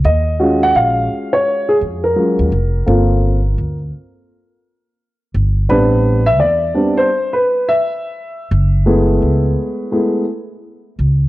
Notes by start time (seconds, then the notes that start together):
0.04 D#2 D#5
0.39 G#3 C#4 F4 F#4
0.63 F#5
0.75 A#1 F5
1.33 C#5
1.69 G#4
1.81 F2
2.04 A#4
2.16 F#3 G#3 C#4 F4
2.39 D#2
2.52 F1
2.86 G1 A#3 C4 F4 A4
3.58 D2
5.34 G1
5.69 A1 G3 B3 C4 D4 B4
6.27 E5
6.40 E2 D5
6.75 G3 B3 C4 D4
6.98 C5
7.33 B4
7.69 E5
8.51 F#1
8.86 G#3 A3 B3 E4
9.22 C#2
9.92 G#3 A3 B3 E4
10.99 C#2